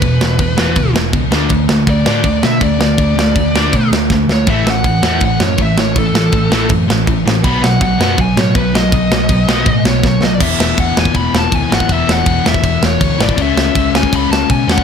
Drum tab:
CC |x---x---x---x---|x---x---x---x---|x---x---x-------|x---x---x---x---|
SD |--o---o---o---o-|--o---o---o---o-|--o---o---o-o-o-|--o---o---o---o-|
BD |o---o---o---o---|o---o---o---o---|o---o---o---o---|o---o---o---o---|

CC |x---x---x---x---|x---x---x---x---|x---x---x-------|x---x---x---x---|
SD |--o---o---o---o-|--o---o---o---o-|--o---o---o-o-o-|--o---o---o---o-|
BD |o---o---o---o---|o---o---o---o---|o---o---o---o---|o---o--oo---o--o|

CC |x---x---x---x---|x---x---x---x---|
SD |--o---o---o---o-|--o---o---o---o-|
BD |o---o--oo---o--o|o---o--oo---o--o|